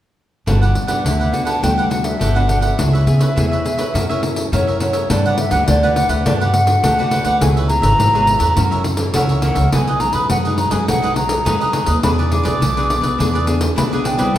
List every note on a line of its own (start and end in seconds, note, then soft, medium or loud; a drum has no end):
0.46 0.72 G1 medium
0.46 1.02 G3 soft
0.46 0.86 B3 soft
0.46 0.60 D4 soft
0.46 0.86 D4 soft
0.46 0.86 F#4 medium
0.46 0.60 G4 soft
0.46 0.61 B4 soft
0.46 0.60 F#5 soft
0.46 pandeiro medium
0.62 0.74 G4 soft
0.62 0.74 B4 medium
0.62 0.74 F#5 medium
0.62 pandeiro soft
0.75 1.00 G2 medium
0.75 muted cavaquinho stroke soft
0.75 pandeiro medium
0.87 1.28 B3 medium
0.87 1.28 D4 medium
0.87 1.29 F#4 medium
0.87 1.03 G4 medium
0.87 1.03 B4 medium
0.87 1.02 F#5 medium
0.87 pandeiro medium
1.04 1.29 D2 medium
1.04 1.60 D3 medium
1.04 1.18 D4 soft
1.04 1.18 G4 soft
1.04 1.19 B4 soft
1.04 1.35 E5 medium
1.04 1.18 F#5 medium
1.04 pandeiro medium
1.19 1.46 G4 soft
1.19 1.45 B4 medium
1.19 1.44 F#5 medium
1.19 pandeiro soft
1.33 1.58 B3 medium
1.33 1.58 D4 medium
1.33 1.58 F#4 medium
1.33 1.45 F#5 medium
1.33 pandeiro soft
1.45 1.61 G4 soft
1.45 1.61 B4 medium
1.45 1.60 F#5 medium
1.45 1.65 A5 medium
1.45 pandeiro medium
1.62 2.12 D2 medium
1.62 2.18 G3 soft
1.62 1.80 B3 medium
1.62 1.76 D4 soft
1.62 1.80 D4 medium
1.62 1.80 F#4 medium
1.62 1.76 G4 soft
1.62 1.76 B4 soft
1.62 1.76 F#5 medium
1.62 1.90 G5 medium
1.62 pandeiro medium
1.78 1.89 G4 soft
1.78 1.89 B4 medium
1.78 1.90 F#5 medium
1.78 pandeiro soft
1.90 2.30 B3 medium
1.90 2.30 D4 medium
1.90 2.30 F#4 medium
1.90 2.07 F#5 medium
1.90 muted cavaquinho stroke soft
1.90 pandeiro medium
2.04 2.49 E5 medium
2.04 pandeiro medium
2.19 2.70 G1 medium
2.19 2.76 D3 soft
2.19 2.33 D4 medium
2.19 2.34 G4 medium
2.19 2.34 B4 medium
2.19 2.34 F#5 medium
2.19 pandeiro medium
2.35 2.74 B3 medium
2.35 2.74 D4 medium
2.35 2.75 F#4 medium
2.35 2.47 G4 soft
2.35 2.48 B4 medium
2.35 2.48 F#5 medium
2.35 pandeiro soft
2.47 2.62 D4 soft
2.47 2.62 G4 soft
2.47 2.61 B4 medium
2.47 2.60 F#5 medium
2.47 2.63 F#5 medium
2.47 pandeiro medium
2.61 2.77 G4 medium
2.61 2.77 B4 soft
2.61 4.48 E5 medium
2.61 2.76 F#5 medium
2.61 pandeiro medium
2.78 3.03 C#2 loud
2.78 3.33 C#3 medium
2.78 3.03 B3 soft
2.78 2.92 E4 soft
2.78 3.03 E4 soft
2.78 3.03 G#4 medium
2.78 2.92 B4 soft
2.78 2.92 C#5 soft
2.78 2.92 E5 medium
2.78 pandeiro medium
2.93 3.05 B4 soft
2.93 3.06 C#5 medium
2.93 3.06 E5 medium
2.93 pandeiro soft
3.06 3.31 C#3 medium
3.06 3.31 B3 medium
3.06 3.31 E4 medium
3.06 3.32 G#4 medium
3.06 muted cavaquinho stroke soft
3.06 pandeiro soft
3.19 3.35 B4 medium
3.19 3.34 C#5 medium
3.19 3.34 E5 medium
3.19 pandeiro medium
3.36 3.61 E2 medium
3.36 3.91 G#2 medium
3.36 3.61 B3 medium
3.36 3.49 E4 soft
3.36 3.61 E4 medium
3.36 3.61 G#4 medium
3.36 3.50 B4 soft
3.36 3.50 C#5 soft
3.36 3.50 E5 soft
3.36 pandeiro medium
3.52 3.78 B4 soft
3.52 3.77 C#5 medium
3.52 3.76 E5 medium
3.52 pandeiro soft
3.65 3.84 B3 medium
3.65 3.84 E4 medium
3.65 3.84 G#4 medium
3.65 pandeiro medium
3.78 3.93 B4 medium
3.78 3.92 C#5 medium
3.78 3.92 E5 medium
3.78 pandeiro medium
3.94 4.43 F#2 medium
3.94 4.49 F#3 medium
3.94 4.03 C#4 medium
3.94 4.03 E4 medium
3.94 4.07 F#4 soft
3.94 4.08 A#4 soft
3.94 4.03 A#4 medium
3.94 4.08 C#5 soft
3.94 4.08 E5 soft
3.94 pandeiro medium
4.09 4.48 C#4 medium
4.09 4.48 E4 medium
4.09 4.48 A#4 medium
4.09 4.21 A#4 medium
4.09 4.22 C#5 medium
4.09 4.22 E5 medium
4.09 pandeiro soft
4.22 muted cavaquinho stroke soft
4.22 pandeiro medium
4.36 pandeiro medium
4.52 5.01 F#2 medium
4.52 5.07 C#3 soft
4.52 4.89 C#4 medium
4.52 4.90 E4 soft
4.52 4.65 F#4 medium
4.52 4.66 A#4 medium
4.52 4.90 A#4 soft
4.52 4.66 C#5 medium
4.52 4.80 C#5 medium
4.52 4.66 E5 medium
4.52 pandeiro medium
4.67 4.80 A#4 soft
4.67 4.80 C#5 medium
4.67 4.80 E5 medium
4.67 pandeiro soft
4.80 4.94 F#4 soft
4.80 4.94 A#4 soft
4.80 5.08 C#5 medium
4.80 4.93 C#5 soft
4.80 4.92 E5 medium
4.80 pandeiro medium
4.93 5.09 A#4 soft
4.93 5.08 C#5 medium
4.93 5.08 E5 medium
4.93 pandeiro medium
5.10 5.47 G2 medium
5.10 5.65 G3 soft
5.10 5.23 D4 soft
5.10 5.37 D4 medium
5.10 5.37 F#4 soft
5.10 5.24 G4 medium
5.10 5.37 B4 medium
5.10 5.24 B4 medium
5.10 5.37 D5 medium
5.10 5.24 F#5 medium
5.10 pandeiro medium
5.25 5.38 G4 soft
5.25 5.38 B4 medium
5.25 5.38 F#5 medium
5.25 pandeiro soft
5.38 5.53 E5 medium
5.38 muted cavaquinho stroke soft
5.38 pandeiro medium
5.51 5.64 D2 medium
5.51 5.77 D4 medium
5.51 5.77 F#4 medium
5.51 5.67 G4 medium
5.51 5.77 B4 medium
5.51 5.66 B4 medium
5.51 5.67 F#5 medium
5.51 5.66 F#5 medium
5.51 pandeiro medium
5.68 6.05 D2 medium
5.68 6.23 D3 medium
5.68 5.81 D4 soft
5.68 5.82 G4 soft
5.68 5.82 B4 medium
5.68 5.95 D5 medium
5.68 5.82 F#5 medium
5.68 pandeiro medium
5.83 6.22 D4 medium
5.83 6.22 F#4 medium
5.83 6.10 G4 medium
5.83 6.09 B4 medium
5.83 6.22 B4 medium
5.83 6.08 F#5 medium
5.83 pandeiro soft
5.96 6.11 F#5 medium
5.96 pandeiro medium
6.09 6.22 D2 medium
6.09 6.24 G4 soft
6.09 6.24 B4 medium
6.09 6.25 E5 medium
6.09 6.23 F#5 medium
6.09 pandeiro medium
6.26 6.75 G2 loud
6.26 6.81 G3 medium
6.26 6.39 D4 soft
6.26 6.65 D4 medium
6.26 6.65 F#4 medium
6.26 6.39 G4 medium
6.26 6.40 B4 soft
6.26 6.65 B4 medium
6.26 6.33 D5 medium
6.26 6.39 F#5 soft
6.26 pandeiro medium
6.40 6.52 G4 medium
6.40 6.53 B4 medium
6.40 6.53 F#5 medium
6.40 pandeiro soft
6.53 7.37 F#5 medium
6.53 muted cavaquinho stroke soft
6.53 pandeiro medium
6.67 6.92 D4 medium
6.67 6.92 F#4 medium
6.67 6.93 B4 medium
6.67 pandeiro medium
6.83 7.20 D2 medium
6.83 7.38 D3 medium
6.83 6.96 D4 medium
6.83 6.97 G4 medium
6.83 6.97 B4 medium
6.83 6.97 F#5 medium
6.83 pandeiro medium
6.99 7.37 D4 medium
6.99 7.37 F#4 medium
6.99 7.11 G4 medium
6.99 7.37 B4 medium
6.99 7.11 B4 medium
6.99 7.12 F#5 medium
6.99 pandeiro soft
7.11 7.25 D4 soft
7.11 7.26 G4 soft
7.11 7.25 B4 soft
7.11 7.24 F#5 medium
7.11 pandeiro medium
7.24 7.38 D2 medium
7.24 7.40 G4 medium
7.24 7.40 B4 medium
7.24 7.39 F#5 medium
7.24 pandeiro medium
7.41 7.78 C#2 medium
7.41 7.96 C#3 soft
7.41 7.58 B3 soft
7.41 7.54 E4 soft
7.41 7.58 E4 soft
7.41 7.58 G#4 medium
7.41 7.55 B4 medium
7.41 7.55 C#5 medium
7.41 7.55 E5 soft
7.41 7.48 G#5 loud
7.41 pandeiro medium
7.56 7.68 B4 soft
7.56 7.68 C#5 medium
7.56 7.69 E5 medium
7.56 pandeiro soft
7.69 8.08 B3 medium
7.69 8.09 E4 medium
7.69 8.09 G#4 medium
7.69 8.83 A#5 loud
7.69 muted cavaquinho stroke soft
7.69 pandeiro medium
7.82 7.96 G#1 medium
7.82 7.98 B4 medium
7.82 7.97 C#5 medium
7.82 7.97 E5 medium
7.82 pandeiro medium
7.98 8.36 G#1 medium
7.98 8.54 G#2 medium
7.98 8.12 E4 soft
7.98 8.12 B4 soft
7.98 8.13 C#5 soft
7.98 8.12 E5 soft
7.98 pandeiro medium
8.13 8.53 B3 medium
8.13 8.53 E4 soft
8.13 8.53 G#4 medium
8.13 8.40 B4 soft
8.13 8.39 C#5 soft
8.13 8.38 E5 medium
8.13 pandeiro soft
8.27 pandeiro medium
8.39 8.53 E2 medium
8.39 8.55 B4 medium
8.39 8.55 C#5 medium
8.39 8.54 E5 medium
8.39 pandeiro medium
8.56 9.06 F#2 loud
8.56 9.12 F#2 medium
8.56 8.96 E3 medium
8.56 8.96 A#3 medium
8.56 8.96 C#4 medium
8.56 8.70 F#4 soft
8.56 8.70 A#4 soft
8.56 8.70 C#5 medium
8.56 8.70 E5 medium
8.56 pandeiro medium
8.71 8.83 A#4 medium
8.71 8.83 C#5 medium
8.71 8.84 E5 medium
8.71 pandeiro soft
8.84 muted cavaquinho stroke soft
8.84 pandeiro medium
8.97 9.38 E3 medium
8.97 9.38 A#3 medium
8.97 9.38 C#4 medium
8.97 pandeiro medium
9.14 9.52 C#2 medium
9.14 9.70 C#3 medium
9.14 9.28 F#4 medium
9.14 9.28 A#4 medium
9.14 9.29 C#5 medium
9.14 9.28 E5 medium
9.14 9.22 F#5 medium
9.14 pandeiro medium
9.29 9.41 A#4 soft
9.29 9.42 C#5 medium
9.29 9.42 E5 medium
9.29 pandeiro soft
9.42 9.60 E3 medium
9.42 9.61 A#3 medium
9.42 9.61 C#4 medium
9.42 9.56 F#4 medium
9.42 9.56 A#4 soft
9.42 9.55 C#5 medium
9.42 9.54 E5 medium
9.42 9.70 F#5 medium
9.42 pandeiro medium
9.55 9.69 C#2 medium
9.55 9.71 A#4 soft
9.55 9.70 C#5 medium
9.55 9.70 E5 medium
9.55 pandeiro medium
9.72 10.09 B1 loud
9.72 10.27 B2 soft
9.72 9.90 F#3 medium
9.72 9.90 G#3 medium
9.72 9.86 D#4 soft
9.72 9.90 D#4 medium
9.72 9.86 G#4 medium
9.72 9.86 B4 medium
9.72 9.86 D#5 medium
9.72 10.02 G#5 medium
9.72 pandeiro medium
9.87 9.99 G#4 medium
9.87 9.99 B4 medium
9.87 10.00 D#5 medium
9.87 pandeiro soft
10.00 10.40 F#3 medium
10.00 10.40 G#3 medium
10.00 10.40 D#4 medium
10.00 10.15 A#5 loud
10.00 muted cavaquinho stroke soft
10.00 pandeiro medium
10.13 10.27 F#2 medium
10.13 10.29 G#4 medium
10.13 10.28 B4 medium
10.13 10.28 D#5 medium
10.13 10.29 B5 medium
10.13 pandeiro medium
10.30 10.67 F#2 medium
10.30 10.85 F#2 medium
10.30 10.43 D#4 soft
10.30 10.44 G#4 medium
10.30 10.44 B4 medium
10.30 10.43 D#5 soft
10.30 10.37 F#5 medium
10.30 pandeiro medium
10.45 10.70 F#3 medium
10.45 10.70 G#3 medium
10.45 10.70 D#4 medium
10.45 10.71 G#4 soft
10.45 10.70 B4 medium
10.45 10.69 D#5 medium
10.45 pandeiro soft
10.58 10.74 A#5 medium
10.58 pandeiro medium
10.70 10.85 F#2 medium
10.70 10.97 F#3 medium
10.70 10.97 G#3 medium
10.70 10.97 D#4 medium
10.70 10.86 G#4 medium
10.70 10.86 B4 medium
10.70 10.85 D#5 medium
10.70 10.87 G#5 medium
10.70 pandeiro medium
10.87 11.37 B1 loud
10.87 11.43 B2 soft
10.87 11.01 D#4 soft
10.87 11.01 G#4 soft
10.87 11.02 B4 soft
10.87 11.01 D#5 medium
10.87 11.16 F#5 medium
10.87 pandeiro medium
11.02 11.41 F#3 medium
11.02 11.42 G#3 medium
11.02 11.42 D#4 medium
11.02 11.15 G#4 medium
11.02 11.15 B4 medium
11.02 11.15 D#5 medium
11.02 pandeiro soft
11.15 11.99 A#5 medium
11.15 muted cavaquinho stroke soft
11.15 pandeiro medium
11.29 pandeiro medium
11.45 12.01 F#2 soft
11.45 11.83 F#2 medium
11.45 11.63 F#3 soft
11.45 11.63 G#3 medium
11.45 11.59 D#4 medium
11.45 11.63 D#4 medium
11.45 11.59 G#4 medium
11.45 11.59 B4 medium
11.45 11.59 D#5 medium
11.45 pandeiro medium
11.60 11.72 G#4 medium
11.60 11.73 B4 medium
11.60 11.73 D#5 medium
11.60 pandeiro soft
11.73 11.91 F#3 medium
11.73 11.91 G#3 medium
11.73 11.87 D#4 soft
11.73 11.91 D#4 medium
11.73 11.87 G#4 soft
11.73 11.86 B4 medium
11.73 11.85 D#5 medium
11.73 pandeiro medium
11.86 12.00 D#2 medium
11.86 12.02 G#4 soft
11.86 12.01 B4 medium
11.86 12.01 D#5 medium
11.86 pandeiro medium
12.03 12.41 E2 medium
12.03 12.58 E3 medium
12.03 12.21 B3 medium
12.03 12.21 D4 medium
12.03 12.17 E4 soft
12.03 12.17 G#4 medium
12.03 12.21 G#4 medium
12.03 12.17 B4 medium
12.03 12.17 D5 medium
12.03 12.10 B5 medium
12.03 pandeiro medium
12.18 12.30 G#4 medium
12.18 12.30 B4 medium
12.18 12.31 D5 medium
12.18 pandeiro soft
12.31 12.59 B3 medium
12.31 12.59 D4 medium
12.31 12.59 G#4 medium
12.31 13.46 D6 loud
12.31 muted cavaquinho stroke soft
12.31 pandeiro medium
12.43 12.58 B1 medium
12.43 12.60 G#4 medium
12.43 12.59 B4 medium
12.43 12.58 D5 medium
12.43 pandeiro medium
12.60 12.98 B1 medium
12.60 13.16 B2 medium
12.60 12.74 E4 soft
12.60 12.75 G#4 medium
12.60 12.75 B4 medium
12.60 12.75 D5 soft
12.60 pandeiro medium
12.76 13.15 B3 medium
12.76 13.15 D4 medium
12.76 13.02 G#4 medium
12.76 13.15 G#4 medium
12.76 13.01 B4 medium
12.76 13.00 D5 medium
12.76 pandeiro soft
12.90 pandeiro medium
13.01 13.16 B1 medium
13.01 13.17 G#4 medium
13.01 13.17 B4 medium
13.01 13.16 D5 medium
13.01 pandeiro medium
13.18 13.68 E2 loud
13.18 13.74 E3 medium
13.18 13.36 B3 medium
13.18 13.37 D4 medium
13.18 13.32 E4 soft
13.18 13.32 G#4 soft
13.18 13.37 G#4 medium
13.18 13.33 B4 soft
13.18 13.32 D5 soft
13.18 pandeiro medium
13.33 13.45 G#4 medium
13.33 13.45 B4 medium
13.33 13.46 D5 medium
13.33 pandeiro soft
13.46 13.86 B3 medium
13.46 13.86 D4 medium
13.46 13.87 G#4 medium
13.46 muted cavaquinho stroke soft
13.46 pandeiro medium
13.61 pandeiro medium
13.76 14.14 B1 medium
13.76 14.32 B2 medium
13.76 13.90 E4 medium
13.76 13.90 G#4 medium
13.76 13.90 B4 medium
13.76 13.90 D5 medium
13.76 13.84 B5 medium
13.76 pandeiro medium
13.91 14.16 B3 medium
13.91 14.16 D4 medium
13.91 14.17 G#4 medium
13.91 14.04 G#4 medium
13.91 14.04 B4 medium
13.91 14.05 D5 medium
13.91 pandeiro soft
14.04 14.18 E4 soft
14.04 14.18 G#4 soft
14.04 14.17 B4 soft
14.04 14.16 D5 medium
14.04 14.38 G5 medium
14.04 pandeiro medium
14.17 14.31 B1 medium
14.17 14.38 G3 medium
14.17 14.38 C4 medium
14.17 14.38 E4 medium
14.17 14.33 G#4 medium
14.17 14.32 B4 medium
14.17 14.32 D5 medium
14.17 pandeiro medium
14.34 14.38 A1 medium
14.34 14.38 A2 medium
14.34 14.38 A4 medium
14.34 14.38 C5 medium